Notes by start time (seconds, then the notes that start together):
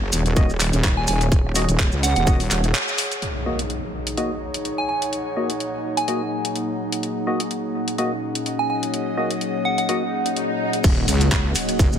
Already playing: F#1 G#4 C#5 F#5
0.13 D#1, open hi-hat, maracas
0.26 closed hi-hat, maracas
0.36 A#3 F#4 D#5, kick, closed hi-hat, maracas
0.50 D#1, maracas
0.60 clap, open hi-hat, maracas
0.73 D#1, closed hi-hat, maracas
0.84 kick, clap, closed hi-hat, maracas
0.97 G#5
1.07 D#1 G#5, open hi-hat, maracas
1.21 closed hi-hat, maracas
1.32 D#1, kick, closed hi-hat, maracas
1.55 A#3 F#4 D#5, open hi-hat, maracas
1.69 D#1, closed hi-hat, maracas
1.79 kick, clap, closed hi-hat, maracas
1.92 C#2, maracas
2.03 F#5, open hi-hat, maracas
2.15 D#1 F#5, closed hi-hat, maracas
2.27 A#3 F#4 D#5, kick, closed hi-hat, maracas
2.40 open hi-hat, maracas
2.51 D#1, clap, open hi-hat, maracas
2.64 closed hi-hat, maracas
2.75 clap, closed hi-hat, maracas
2.88 maracas
2.98 open hi-hat, maracas
3.11 closed hi-hat, maracas
3.22 A#3 D#4 F#4 D#5, closed hi-hat, impact
3.46 A#3 F#4 D#5
3.54 G#4
3.59 C#5, closed hi-hat
3.70 closed hi-hat
4.07 closed hi-hat
4.12 F#5
4.17 A#3 F#4 D#5, closed hi-hat
4.54 closed hi-hat
4.65 closed hi-hat
4.78 G#5
4.89 G#5
5.02 closed hi-hat
5.13 closed hi-hat
5.37 A#3 F#4 D#5
5.50 closed hi-hat
5.60 closed hi-hat
5.97 G#5, closed hi-hat
6.08 A#3 F#4 D#5, closed hi-hat
6.45 closed hi-hat
6.56 closed hi-hat
6.92 closed hi-hat
7.03 C#5, closed hi-hat
7.27 A#3 F#4 D#5
7.40 closed hi-hat
7.51 closed hi-hat
7.85 D#5, closed hi-hat
7.98 A#3 F#4 D#5, closed hi-hat
8.35 closed hi-hat
8.46 closed hi-hat
8.59 G#5
8.70 G#5
8.83 closed hi-hat
8.94 closed hi-hat
9.17 A#3 F#4 D#5
9.31 closed hi-hat
9.41 closed hi-hat
9.65 F#5
9.78 F#5, closed hi-hat
9.89 A#3 F#4 D#5, closed hi-hat, swell
10.26 closed hi-hat
10.36 closed hi-hat
10.73 closed hi-hat
10.84 D#1 A#3 F#4 D#5, kick, closed hi-hat, crash, ride, sub drop, maracas
11.08 C#2 C#5, open hi-hat, ride, maracas
11.21 closed hi-hat, maracas
11.32 C#2, kick, clap, closed hi-hat, ride, maracas
11.55 open hi-hat, ride, maracas
11.69 closed hi-hat, maracas
11.79 F#1, kick, closed hi-hat, ride, maracas
11.92 D#1, maracas